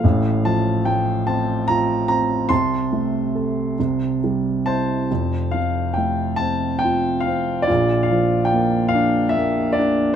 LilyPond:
<<
  \new Staff \with { instrumentName = "Grand piano" } { \time 6/8 \key f \major \tempo 4. = 47 << { f''8 a''8 g''8 a''8 bes''8 bes''8 | c'''2 r8 a''8~ | a''8 f''8 g''8 a''8 g''8 f''8 | d''8 f''8 g''8 f''8 e''8 d''8 | } \\ { a'4 r2 | a''2 r8 c''8~ | c''4 r2 | f'4. r4. | } >> }
  \new Staff \with { instrumentName = "Grand piano" } { \time 6/8 \key f \major <a,, a,>8 f8 a8 c'8 f'8 c'8 | <c, c>8 a8 a'8 <c, c>8 g8 e'8 | <f,, f,>8 c8 a8 c'8 f'8 c'8 | <bes,, bes,>8 f8 bes8 d'8 bes8 d'8 | }
>>